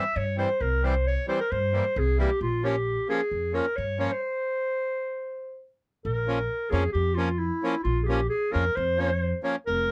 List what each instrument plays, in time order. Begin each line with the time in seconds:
Already playing: clarinet E5
0.16 upright bass G2, clarinet C#5
0.37 accordion E3 G3 C4, clarinet C5
0.61 upright bass C2, clarinet A#4
0.83 accordion E3 G3 C4, clarinet C5
1.07 clarinet C#5
1.28 accordion E3 G3 C4, clarinet C5
1.40 clarinet A#4
1.51 upright bass G2, clarinet C5
1.73 accordion E3 G3 A#3
1.96 upright bass C2, clarinet G#4
2.18 accordion E3 G3 A#3, clarinet G4
2.41 upright bass A#1, clarinet F4
2.63 accordion F3 A#3 C#4, clarinet G4
3.09 accordion F3 A#3 C#4, clarinet G#4
3.31 upright bass F2
3.53 accordion F3 A#3 C#4, clarinet A#4
3.76 upright bass G2, clarinet C#5
3.99 accordion F3 A#3 C#4, clarinet C#5
4.12 clarinet C5
6.05 upright bass A#1, clarinet A#4
6.27 accordion F3 A#3 C#4
6.70 upright bass F2, accordion F3 A#3 C#4, clarinet G#4
6.92 upright bass F2, clarinet G4
7.14 accordion F3 A#3 C#4, clarinet F4
7.38 clarinet E4
7.64 accordion F3 A#3 C#4
7.83 upright bass A#1, clarinet F4
8.03 clarinet G4 G#4
8.09 accordion F3 A#3 C#4
8.29 clarinet G#4
8.51 upright bass F2, accordion F3 A#3 C#4, clarinet A#4
8.75 upright bass F2, clarinet C5
8.97 accordion F3 A#3 C#4
9.43 accordion F3 A#3 C#4
9.67 upright bass F1, clarinet A#4